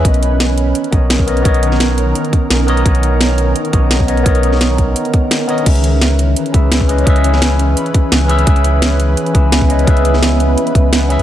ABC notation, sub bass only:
X:1
M:4/4
L:1/16
Q:1/4=171
K:C#dor
V:1 name="Sub bass" clef=bass
B,,,8 z2 B,,,6 | B,,,8 z4 B,,,4 | B,,,8 z2 B,,,6 | B,,,8 z8 |
C,,8 z2 C,,6 | C,,8 z4 C,,4 | C,,8 z2 C,,6 | C,,8 z2 C,,4- C,, E,, |]